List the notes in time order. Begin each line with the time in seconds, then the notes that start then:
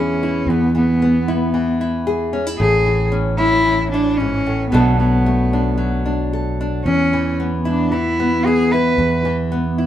Already playing: E2 E3 B3 C#4 E4 G#4
0.23 E4
0.47 E2 B3
0.75 E3 B3
1.02 B3
1.28 E4
1.54 E3
1.81 E4
2.07 G#4
2.33 C#4
2.47 E4
2.58 A1 A2 G#4
2.86 E3
3.12 C#4
3.38 C#4 E4
3.65 E3
3.92 D4 E4
4.17 G#2 C#4
4.46 A2
4.70 B1 B2 F#3 A3 B3 D4
4.74 A4
4.97 F#3 B3
5.26 A3
5.53 D4
5.78 F#3
6.06 D4
6.33 A4
6.61 D4
6.85 E2 C#4
7.13 E3
7.40 B3
7.65 D4 E4
7.92 E3 E4
8.20 B3
8.46 E4 G#4
8.72 E4 B4
8.98 E2
9.25 E3
9.52 B3
9.78 E4